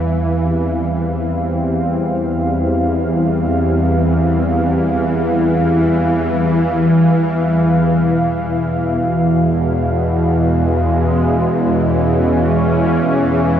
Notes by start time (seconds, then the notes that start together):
Already playing: E2 E3 G3 C4 F5
7.89 B2
9.19 G#3
10.69 C#4